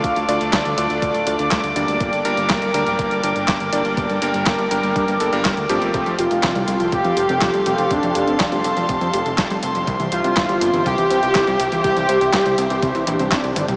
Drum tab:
HH |xxxxxxxxxxxxxxxx|xxxxxxxxxxxxxxxx|xxxxxxxxxxxxxxxx|xxxxxxxxxxxxxxxx|
CP |----x-------x---|----x-------x---|----x-------x---|----x-------x---|
SD |----o-------o---|----o-------o---|----o-------o---|----o-------o---|
T1 |----------------|----------------|----------------|----------------|
T2 |----------------|----------------|----------------|----------------|
BD |o---o---o---o---|o---o---o---o---|o---o---o---o---|o---o---o---o---|

HH |xxxxxxxxxxxxxxxx|xxxxxxxxxxxxxxxx|xxxxxxxxxxxxxxxx|
CP |----x-------x---|----x-------x---|----x-------x---|
SD |----o-------o---|----o-------o---|----o-------o---|
T1 |----------------|----------------|--------------o-|
T2 |----------------|----------------|---------------o|
BD |o---o---o---o---|o---o---o---o---|o---o---o---o---|